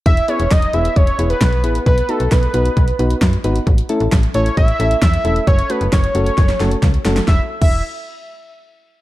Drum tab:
CC |----------------|----------------|----------------|----------------|
HH |xxxxxxxxxxxxxxxx|xxxxxxxxxxxxxxxx|xxxxxxxxxxxxxxxx|xxxxxxxxxxxxxxxx|
SD |----o-------o---|----o-------o---|----o-------o---|----o---ooo-o-oo|
BD |o---o---o---o---|o---o---o---o---|o---o---o---o---|o---o---o---o---|

CC |---x------------|
HH |----------------|
SD |o---------------|
BD |o--o------------|